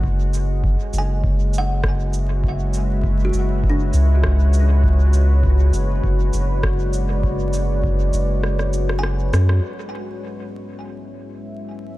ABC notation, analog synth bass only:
X:1
M:4/4
L:1/8
Q:1/4=100
K:Emix
V:1 name="Analog synth bass" clef=bass
F,,,2 z F,,,4- F,,,- | F,,,3 F,,,2 C,,3- | C,,3 F,,, F,,, F,,,3- | F,,,3 F,,,4 F,, |
z8 |]